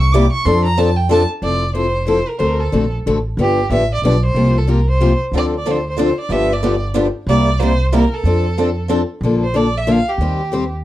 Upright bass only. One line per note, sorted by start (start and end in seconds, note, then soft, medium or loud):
0.00 0.26 C2 loud
0.45 1.24 F2 loud
1.42 2.20 F1 medium
2.40 2.66 D2 medium
2.72 3.00 A#1 medium
3.06 3.34 A1 medium
3.37 3.64 G1 medium
3.70 3.98 A1 medium
4.02 4.30 B1 medium
4.34 5.13 C2 medium
5.32 6.10 D2 medium
6.29 7.07 G1 medium
7.27 8.05 C2 medium
8.24 9.02 F2 medium
9.21 9.99 A#1 medium
10.18 10.84 D#2 medium